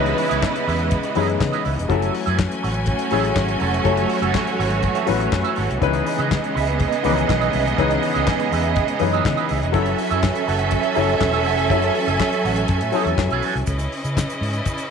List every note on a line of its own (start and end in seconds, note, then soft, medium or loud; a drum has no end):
0.00 0.12 C#2 medium
0.00 1.86 C#3 medium
0.00 1.15 E3 medium
0.00 1.86 E3 medium
0.00 1.85 G#3 medium
0.00 1.86 G#3 medium
0.00 1.85 B3 medium
0.00 1.16 C#4 medium
0.00 1.16 D#4 medium
0.00 0.16 E4 medium
0.00 1.85 E4 medium
0.00 1.92 F#4 medium
0.00 0.16 B4 medium
0.00 0.60 B4 medium
0.00 1.85 B4 medium
0.00 0.17 D#5 medium
0.00 1.86 D#5 medium
0.06 closed hi-hat soft
0.17 muted clean electric guitar stroke soft
0.17 open hi-hat medium
0.29 0.40 C#2 medium
0.29 0.41 E4 soft
0.29 0.41 B4 medium
0.29 0.40 D#5 medium
0.29 closed hi-hat soft
0.42 muted clean electric guitar stroke soft
0.42 kick loud
0.42 snare loud
0.42 clap loud
0.55 muted clean electric guitar stroke soft
0.55 closed hi-hat soft
0.66 0.95 E2 loud
0.66 0.79 E4 medium
0.66 0.79 B4 medium
0.66 0.78 E5 medium
0.66 open hi-hat medium
0.79 0.90 E4 medium
0.79 0.90 B4 medium
0.79 0.89 E5 medium
0.79 closed hi-hat soft
0.91 kick loud
0.91 closed hi-hat medium
1.03 muted clean electric guitar stroke soft
1.03 closed hi-hat soft
1.15 1.35 F#2 medium
1.15 1.65 E3 medium
1.15 1.66 C#4 medium
1.15 1.66 D#4 medium
1.15 1.29 E4 medium
1.15 1.66 G#4 medium
1.15 1.28 B4 medium
1.15 1.27 D#5 medium
1.15 open hi-hat medium
1.28 muted clean electric guitar stroke soft
1.28 closed hi-hat soft
1.40 1.50 C#3 medium
1.40 muted clean electric guitar stroke soft
1.40 kick loud
1.40 snare loud
1.40 clap loud
1.52 1.63 E4 medium
1.52 1.64 B4 medium
1.52 1.65 D#5 medium
1.52 closed hi-hat soft
1.64 1.75 C#2 medium
1.64 1.75 E4 medium
1.64 1.75 B4 medium
1.64 1.76 E5 medium
1.64 open hi-hat soft
1.77 1.87 F1 medium
1.77 muted clean electric guitar stroke medium
1.77 closed hi-hat soft
1.89 2.08 F#1 loud
1.89 13.63 E3 medium
1.89 2.55 F#3 medium
1.89 5.78 F#3 medium
1.89 5.78 A3 medium
1.89 5.78 C#4 medium
1.89 2.56 C#4 medium
1.89 2.56 E4 medium
1.89 2.12 A4 medium
1.89 2.56 A4 medium
1.89 2.12 C#5 medium
1.89 2.13 E5 medium
1.89 5.78 G#5 medium
1.89 kick medium
1.89 closed hi-hat medium
2.02 closed hi-hat soft
2.14 muted clean electric guitar stroke soft
2.14 open hi-hat medium
2.26 2.45 F#2 loud
2.26 2.37 A4 soft
2.26 2.37 C#5 medium
2.26 2.36 E5 medium
2.26 closed hi-hat soft
2.38 muted clean electric guitar stroke soft
2.38 kick loud
2.38 snare loud
2.38 clap loud
2.51 muted clean electric guitar stroke soft
2.51 closed hi-hat medium
2.62 2.92 A1 loud
2.62 2.75 A4 medium
2.62 2.74 C#5 medium
2.62 2.73 F#5 medium
2.62 open hi-hat medium
2.74 2.86 A4 soft
2.74 2.86 C#5 medium
2.74 2.85 F#5 medium
2.74 closed hi-hat soft
2.86 5.78 A3 medium
2.86 5.78 F#4 medium
2.86 5.78 C#5 medium
2.86 muted clean electric guitar stroke soft
2.86 kick loud
2.86 closed hi-hat medium
2.99 muted clean electric guitar stroke soft
2.99 closed hi-hat medium
3.10 3.31 A1 medium
3.10 3.61 F#3 medium
3.10 3.62 C#4 medium
3.10 3.62 E4 medium
3.10 3.62 G#4 medium
3.10 3.25 A4 medium
3.10 3.24 C#5 medium
3.10 3.23 E5 loud
3.10 open hi-hat medium
3.24 muted clean electric guitar stroke soft
3.24 closed hi-hat soft
3.36 3.55 G#1 medium
3.36 muted clean electric guitar stroke soft
3.36 kick loud
3.36 snare loud
3.36 clap loud
3.48 muted clean electric guitar stroke soft
3.48 closed hi-hat soft
3.60 3.80 F1 loud
3.60 3.74 A4 medium
3.60 3.73 C#5 medium
3.60 3.73 F#5 medium
3.60 open hi-hat medium
3.73 3.84 A4 soft
3.73 3.84 C#5 medium
3.73 3.83 E5 medium
3.73 closed hi-hat medium
3.84 4.04 F#1 medium
3.84 4.51 F#3 medium
3.84 4.51 C#4 medium
3.84 4.52 E4 medium
3.84 4.08 A4 medium
3.84 4.52 A4 loud
3.84 4.08 C#5 medium
3.84 4.09 E5 loud
3.84 kick medium
3.84 closed hi-hat medium
3.97 closed hi-hat soft
4.09 muted clean electric guitar stroke soft
4.09 open hi-hat medium
4.22 4.31 F#1 medium
4.22 4.32 A4 soft
4.22 4.33 C#5 medium
4.22 4.32 E5 medium
4.22 closed hi-hat soft
4.34 muted clean electric guitar stroke soft
4.34 kick loud
4.34 snare loud
4.34 clap loud
4.46 muted clean electric guitar stroke soft
4.46 closed hi-hat medium
4.59 4.87 G#1 medium
4.59 4.72 A4 medium
4.59 4.71 C#5 medium
4.59 4.70 F#5 medium
4.59 open hi-hat medium
4.70 4.82 A4 soft
4.70 4.82 C#5 soft
4.70 4.81 F#5 medium
4.70 closed hi-hat soft
4.83 muted clean electric guitar stroke soft
4.83 kick loud
4.83 closed hi-hat medium
4.95 5.07 A4 medium
4.95 5.07 C#5 medium
4.95 5.08 E5 medium
4.95 closed hi-hat medium
5.06 5.27 A1 medium
5.06 5.57 F#3 medium
5.06 5.57 C#4 medium
5.06 5.58 E4 medium
5.06 5.58 B4 medium
5.06 muted clean electric guitar stroke soft
5.06 open hi-hat medium
5.20 muted clean electric guitar stroke soft
5.20 closed hi-hat soft
5.32 5.42 F#2 medium
5.32 muted clean electric guitar stroke soft
5.32 kick loud
5.32 snare loud
5.32 clap loud
5.44 5.55 A4 medium
5.44 5.56 C#5 medium
5.44 5.57 E5 medium
5.44 closed hi-hat soft
5.56 5.67 G#1 medium
5.56 5.67 A4 medium
5.56 5.67 C#5 medium
5.56 5.68 F#5 medium
5.56 open hi-hat medium
5.69 5.79 C2 medium
5.69 muted clean electric guitar stroke soft
5.69 closed hi-hat soft
5.81 6.00 C#2 loud
5.81 9.71 C#3 medium
5.81 5.87 D#3 medium
5.81 9.71 G#3 medium
5.81 9.70 B3 medium
5.81 9.71 B3 medium
5.81 6.48 C#4 medium
5.81 9.71 D#4 medium
5.81 6.48 D#4 medium
5.81 6.04 E4 medium
5.81 9.71 G#4 medium
5.81 6.05 B4 medium
5.81 6.49 B4 loud
5.81 9.71 D#5 medium
5.81 6.05 D#5 medium
5.81 kick medium
5.81 closed hi-hat medium
5.87 6.51 E3 medium
5.93 closed hi-hat soft
6.06 muted clean electric guitar stroke soft
6.06 open hi-hat medium
6.19 6.37 C#3 loud
6.19 6.29 E4 soft
6.19 6.29 B4 medium
6.19 6.29 D#5 medium
6.19 closed hi-hat soft
6.30 muted clean electric guitar stroke soft
6.30 kick loud
6.30 snare loud
6.30 clap loud
6.43 muted clean electric guitar stroke soft
6.43 closed hi-hat medium
6.54 6.84 C#2 medium
6.54 6.67 E4 medium
6.54 6.66 B4 medium
6.54 6.66 E5 medium
6.54 open hi-hat medium
6.67 6.78 E4 soft
6.67 6.78 B4 medium
6.67 6.77 E5 medium
6.67 closed hi-hat soft
6.80 kick loud
6.80 closed hi-hat medium
6.92 muted clean electric guitar stroke medium
6.92 closed hi-hat soft
7.03 7.23 C#2 medium
7.03 7.10 D#3 medium
7.03 7.54 C#4 medium
7.03 7.54 D#4 medium
7.03 7.24 E4 medium
7.03 7.16 B4 medium
7.03 7.55 B4 medium
7.03 7.15 D#5 medium
7.03 open hi-hat medium
7.09 7.57 E3 medium
7.16 muted clean electric guitar stroke soft
7.16 closed hi-hat soft
7.28 7.48 B1 medium
7.28 muted clean electric guitar stroke soft
7.28 kick loud
7.28 snare loud
7.28 clap medium
7.40 7.52 E4 medium
7.40 7.52 B4 medium
7.40 7.54 D#5 medium
7.40 closed hi-hat soft
7.53 7.73 C2 medium
7.53 7.63 E4 medium
7.53 7.64 B4 medium
7.53 7.64 E5 medium
7.53 open hi-hat medium
7.65 muted clean electric guitar stroke soft
7.65 closed hi-hat soft
7.76 7.97 C#2 loud
7.76 8.44 E3 medium
7.76 8.45 C#4 medium
7.76 8.45 D#4 medium
7.76 8.00 E4 medium
7.76 8.00 B4 medium
7.76 8.45 B4 loud
7.76 8.01 D#5 medium
7.76 kick medium
7.76 closed hi-hat medium
7.91 closed hi-hat soft
8.02 muted clean electric guitar stroke soft
8.02 open hi-hat medium
8.14 8.25 C#2 medium
8.14 8.26 E4 medium
8.14 8.25 B4 medium
8.14 8.25 D#5 medium
8.14 closed hi-hat soft
8.27 muted clean electric guitar stroke soft
8.27 kick loud
8.27 snare loud
8.27 clap loud
8.39 muted clean electric guitar stroke soft
8.39 closed hi-hat medium
8.52 8.80 E2 loud
8.52 8.64 E4 medium
8.52 8.63 B4 medium
8.52 8.62 E5 medium
8.52 open hi-hat medium
8.63 8.74 E4 medium
8.63 8.74 B4 medium
8.63 8.74 E5 medium
8.63 closed hi-hat soft
8.75 8.88 E4 medium
8.75 8.88 B4 medium
8.75 8.87 D#5 medium
8.75 kick loud
8.75 closed hi-hat medium
8.88 muted clean electric guitar stroke soft
8.88 closed hi-hat medium
8.99 9.20 F#2 medium
8.99 9.50 E3 medium
8.99 9.50 C#4 medium
8.99 9.50 D#4 medium
8.99 9.51 B4 medium
8.99 muted clean electric guitar stroke soft
8.99 open hi-hat medium
9.12 9.24 E4 medium
9.12 9.23 B4 medium
9.12 9.23 D#5 medium
9.12 closed hi-hat soft
9.25 9.35 C#3 medium
9.25 kick loud
9.25 snare loud
9.25 clap medium
9.37 9.48 E4 medium
9.37 9.49 B4 medium
9.37 9.50 D#5 medium
9.37 closed hi-hat soft
9.49 9.60 C#2 medium
9.49 9.60 E4 medium
9.49 9.60 B4 medium
9.49 9.61 E5 medium
9.49 open hi-hat soft
9.62 9.74 F1 medium
9.62 muted clean electric guitar stroke soft
9.62 closed hi-hat soft
9.72 9.93 F#1 loud
9.72 10.39 F#3 medium
9.72 13.63 F#3 medium
9.72 10.40 C#4 medium
9.72 13.63 C#4 medium
9.72 10.40 E4 medium
9.72 10.40 A4 loud
9.72 9.96 A4 medium
9.72 13.63 A4 medium
9.72 9.97 C#5 loud
9.72 13.63 E5 medium
9.72 9.97 E5 medium
9.72 13.63 G#5 medium
9.72 kick medium
9.72 closed hi-hat medium
9.86 closed hi-hat medium
9.98 muted clean electric guitar stroke soft
9.98 open hi-hat medium
10.10 10.30 F#2 medium
10.10 10.21 A4 medium
10.10 10.21 C#5 medium
10.10 10.21 E5 medium
10.10 closed hi-hat soft
10.23 kick loud
10.23 snare loud
10.23 clap loud
10.34 muted clean electric guitar stroke medium
10.34 closed hi-hat medium
10.47 10.76 F#1 loud
10.47 10.60 A4 medium
10.47 10.59 C#5 medium
10.47 10.58 F#5 medium
10.47 open hi-hat medium
10.59 10.69 A4 soft
10.59 10.70 C#5 medium
10.59 10.70 F#5 medium
10.59 closed hi-hat medium
10.70 muted clean electric guitar stroke soft
10.70 kick loud
10.70 closed hi-hat medium
10.82 muted clean electric guitar stroke soft
10.82 closed hi-hat soft
10.95 11.16 F#1 medium
10.95 11.46 F#3 medium
10.95 11.46 C#4 medium
10.95 11.46 E4 medium
10.95 11.09 A4 medium
10.95 11.47 A4 medium
10.95 11.09 C#5 medium
10.95 11.07 E5 medium
10.95 open hi-hat medium
11.08 muted clean electric guitar stroke soft
11.08 closed hi-hat soft
11.21 11.45 E1 medium
11.21 muted clean electric guitar stroke soft
11.21 kick loud
11.21 snare loud
11.21 clap loud
11.33 11.44 A4 medium
11.33 11.44 C#5 medium
11.33 11.46 E5 loud
11.33 closed hi-hat soft
11.45 11.70 F1 medium
11.45 11.56 A4 medium
11.45 11.56 C#5 medium
11.45 11.56 F#5 medium
11.45 open hi-hat medium
11.58 muted clean electric guitar stroke soft
11.58 closed hi-hat soft
11.70 11.89 F#1 loud
11.70 12.37 F#3 medium
11.70 12.37 C#4 medium
11.70 12.37 E4 medium
11.70 11.93 A4 medium
11.70 12.37 A4 medium
11.70 11.94 C#5 medium
11.70 11.94 E5 medium
11.70 kick loud
11.70 closed hi-hat medium
11.82 closed hi-hat soft
11.95 muted clean electric guitar stroke soft
11.95 open hi-hat medium
12.06 12.17 F#1 medium
12.06 12.18 A4 soft
12.06 12.18 C#5 soft
12.06 12.17 E5 medium
12.06 closed hi-hat soft
12.20 muted clean electric guitar stroke soft
12.20 kick loud
12.20 snare loud
12.20 clap loud
12.32 muted clean electric guitar stroke soft
12.32 closed hi-hat medium
12.43 12.63 A1 medium
12.43 12.57 A4 medium
12.43 12.56 C#5 medium
12.43 12.55 F#5 medium
12.43 open hi-hat medium
12.56 12.67 A4 soft
12.56 12.67 C#5 soft
12.56 12.67 F#5 soft
12.56 closed hi-hat soft
12.68 12.78 F#2 loud
12.68 muted clean electric guitar stroke soft
12.68 kick loud
12.68 closed hi-hat medium
12.81 12.90 A2 medium
12.81 muted clean electric guitar stroke soft
12.81 closed hi-hat medium
12.92 13.42 F#3 medium
12.92 13.43 C#4 medium
12.92 13.43 E4 medium
12.92 13.14 A4 medium
12.92 13.43 A4 medium
12.92 13.07 C#5 medium
12.92 open hi-hat medium
12.96 13.06 E5 medium
13.06 13.15 E2 medium
13.06 muted clean electric guitar stroke soft
13.06 closed hi-hat soft
13.18 13.27 F#2 medium
13.18 muted clean electric guitar stroke soft
13.18 kick loud
13.18 snare loud
13.18 clap loud
13.31 13.40 B1 medium
13.31 13.43 A4 medium
13.31 13.44 C#5 medium
13.31 13.44 E5 medium
13.31 closed hi-hat soft
13.42 13.53 A4 medium
13.42 13.54 C#5 medium
13.42 13.54 F#5 medium
13.42 open hi-hat medium
13.55 13.64 C2 medium
13.55 muted clean electric guitar stroke soft
13.55 closed hi-hat soft
13.66 13.86 C#2 medium
13.66 14.90 C#3 medium
13.66 14.90 C#4 medium
13.66 14.90 E4 medium
13.66 14.90 B4 medium
13.66 14.90 D#5 medium
13.66 kick medium
13.66 closed hi-hat medium
13.66 shaker medium
13.79 closed hi-hat soft
13.79 shaker soft
13.92 open hi-hat medium
14.05 14.23 C#3 medium
14.05 closed hi-hat soft
14.05 shaker soft
14.17 kick loud
14.17 snare loud
14.17 clap medium
14.17 shaker medium
14.30 closed hi-hat soft
14.30 shaker soft
14.41 14.60 G#2 medium
14.41 open hi-hat medium
14.53 closed hi-hat soft
14.53 shaker soft
14.65 kick loud
14.65 closed hi-hat medium
14.65 shaker medium
14.78 closed hi-hat soft
14.78 shaker soft